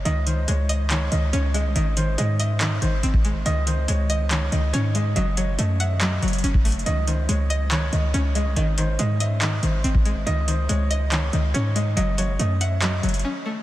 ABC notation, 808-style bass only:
X:1
M:4/4
L:1/16
Q:1/4=141
K:G#phr
V:1 name="808-style bass" clef=bass
C,,4 C,,6 C,,2 C,,3 ^B,,, | G,,,4 G,,6 G,,,2 G,,,4 | C,,4 C,,6 C,,2 G,,4 | F,,,4 F,,6 F,,,2 F,,,4 |
C,,4 C,,6 C,,2 C,,3 ^B,,, | G,,,4 G,,6 G,,,2 G,,,4 | C,,4 C,,6 C,,2 G,,4 | F,,,4 F,,6 F,,,2 z4 |]